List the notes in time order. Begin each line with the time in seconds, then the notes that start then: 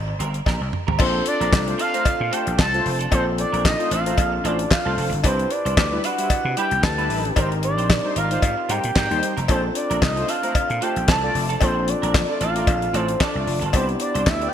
Already playing: G#1
0.08 muted clean electric guitar stroke
0.19 G1 C4 G4 A#4, closed hi-hat
0.34 muted clean electric guitar stroke, closed hi-hat
0.46 A#1 C4 G4 A#4, kick, snare, cowbell
0.61 C2, muted clean electric guitar stroke
0.73 muted clean electric guitar stroke, mid tom
0.87 G#1 C4 G4 A#4, floor tom
0.99 A#1 C4 D4 F4 A4 C5, kick, crash, cowbell
1.14 muted clean electric guitar stroke
1.26 D5, muted clean electric guitar stroke, closed hi-hat
1.40 A#1 C4 D4 A#4, closed hi-hat
1.52 C2, muted clean electric guitar stroke, kick, snare, clap, cowbell
1.67 A3 F4 C5, muted clean electric guitar stroke, closed hi-hat
1.78 C4 D4 A4 F5, closed hi-hat
1.93 A3 C4 D4 F4 A#4 C5, closed hi-hat
2.05 muted clean electric guitar stroke, muted slap bass stroke, kick, closed hi-hat, cowbell
2.20 A#2, muted clean electric guitar stroke
2.31 A3 C4 D4 F4 A4 C5 G5, closed hi-hat
2.46 A#1, muted clean electric guitar stroke, closed hi-hat
2.58 C2 C4 D4 A4 A5, kick, snare, clap, cowbell
2.73 A3 F4 C5, muted clean electric guitar stroke, closed hi-hat
2.85 F1, muted clean electric guitar stroke, open hi-hat
2.99 C4 D4 A4, closed hi-hat
3.11 A#1 C4 D4 F4 A4 C5, kick, closed hi-hat, cowbell
3.26 muted clean electric guitar stroke
3.38 D5, muted clean electric guitar stroke, closed hi-hat
3.53 A#1 C4 D4 A#4, closed hi-hat
3.64 D#5, muted clean electric guitar stroke, kick, snare, clap, cowbell
3.79 A3 F4 C5, muted clean electric guitar stroke, closed hi-hat
3.91 A1 C4 D4 A4 F5, closed hi-hat
4.06 A3 C4 D4 F4 A#4 C5, closed hi-hat
4.17 A#1, muted clean electric guitar stroke, kick, closed hi-hat, cowbell
4.32 muted clean electric guitar stroke
4.44 A1 A3 C4 D4 F4 A4 C5 D5, closed hi-hat
4.59 muted clean electric guitar stroke, closed hi-hat
4.71 F5, muted clean electric guitar stroke, kick, snare, clap, cowbell
4.85 C2 A3 C4 D4 F4 A4 C5
4.97 F1 C4 D4 A4, open hi-hat
5.12 G1, muted clean electric guitar stroke, closed hi-hat
5.23 C2 D4 E4 G4 B4 C5, kick, closed hi-hat, cowbell
5.39 muted clean electric guitar stroke, closed hi-hat
5.50 D5, muted clean electric guitar stroke, closed hi-hat
5.65 C2 D4 E4 C5, closed hi-hat
5.77 D2, kick, snare, clap, cowbell
5.92 G3 E4 B4, muted clean electric guitar stroke
6.04 D4 E4 B4 F#5, closed hi-hat
6.18 G3 D4 E4 B4 C5, closed hi-hat
6.30 muted slap bass stroke, kick, closed hi-hat, cowbell
6.45 C3, muted clean electric guitar stroke
6.57 G3 D4 E4 B4 G5, closed hi-hat
6.71 C2, muted clean electric guitar stroke, closed hi-hat
6.83 D2 D4 E4 G4 B4 A5, muted clean electric guitar stroke, kick, snare, clap, cowbell
6.98 G3 D4 E4 B4, closed hi-hat
7.09 A1 D4 E4 B4, open hi-hat
7.24 muted clean electric guitar stroke, closed hi-hat
7.36 G#1 C4 D#4 G4 A#4 C5, kick, closed hi-hat, cowbell
7.51 muted clean electric guitar stroke, closed hi-hat
7.63 D5, muted clean electric guitar stroke, closed hi-hat
7.78 A#1 C4 G4 C5, closed hi-hat
7.90 muted clean electric guitar stroke, kick, snare, clap, cowbell
8.04 G3 D#4 C5, muted clean electric guitar stroke
8.16 G#1 C4 G4 A#4 F5, closed hi-hat
8.31 G3 C4 D#4 G4 C5, closed hi-hat
8.42 G#2, muted clean electric guitar stroke, kick, closed hi-hat, cowbell
8.58 muted clean electric guitar stroke
8.69 G#2 G3 C4 D#4 G4 A#4 C5 G5, closed hi-hat
8.84 A#2, muted clean electric guitar stroke, closed hi-hat
8.95 G#2 C4 G4 A#4 G5, kick, snare, clap, cowbell
9.10 D#2 G3 D#4 C5, muted clean electric guitar stroke, closed hi-hat
9.22 muted clean electric guitar stroke, closed hi-hat
9.37 F1 C4 G4 A#4, closed hi-hat
9.48 A#1 C4 D4 F4 A4 C5, kick, closed hi-hat, cowbell
9.63 muted clean electric guitar stroke
9.75 D5, muted clean electric guitar stroke, closed hi-hat
9.90 A#1 C4 D4 A#4, closed hi-hat
10.02 C2 D#5, muted clean electric guitar stroke, kick, snare, clap, cowbell
10.16 A3 F4 C5, muted clean electric guitar stroke, closed hi-hat
10.28 C4 D4 A4 F5, closed hi-hat
10.43 A3 C4 D4 F4 A#4 C5, closed hi-hat
10.55 muted slap bass stroke, kick, closed hi-hat, cowbell
10.70 A#2, muted clean electric guitar stroke, closed hi-hat
10.81 A3 C4 D4 F4 A4 C5 G5, closed hi-hat
10.96 A#1, muted clean electric guitar stroke, closed hi-hat
11.08 C2 C4 D4 A4 A5, kick, snare, clap, cowbell
11.23 A3 F4 D5, muted clean electric guitar stroke
11.34 F1, muted clean electric guitar stroke, open hi-hat
11.49 C4 D4 A4, closed hi-hat
11.61 A#1 C4 D4 F4 A4 C5, kick, closed hi-hat, cowbell
11.76 muted clean electric guitar stroke
11.87 D5, muted clean electric guitar stroke, closed hi-hat
12.02 A#1 C4 D4 A#4, closed hi-hat
12.14 muted clean electric guitar stroke, kick, snare, clap, cowbell
12.29 A3 F4 D5, muted clean electric guitar stroke
12.41 A1 C4 D4 A4 F5, closed hi-hat
12.55 A3 C4 D4 F4 A#4 D5, closed hi-hat
12.67 A#1, muted clean electric guitar stroke, kick, closed hi-hat, cowbell
12.82 muted clean electric guitar stroke, closed hi-hat
12.93 A1 A3 C4 D4 F4 A4 C5 D5, closed hi-hat
13.08 muted clean electric guitar stroke, closed hi-hat
13.20 C4 D4 A4 D5, kick, snare, clap, cowbell
13.35 C2 A3 F4 D5, muted clean electric guitar stroke
13.47 F1, muted clean electric guitar stroke, open hi-hat
13.61 G1 C4 D4 A4, closed hi-hat
13.73 C2 B3 D4 E4 G4 B4 C5, kick, closed hi-hat, cowbell
13.89 muted clean electric guitar stroke, closed hi-hat
14.00 D5, muted clean electric guitar stroke, closed hi-hat
14.15 C2 D4 E4 C5, closed hi-hat
14.27 D2 E5, kick, snare, clap, cowbell
14.41 B3 G4 D5, muted clean electric guitar stroke, closed hi-hat
14.48 G5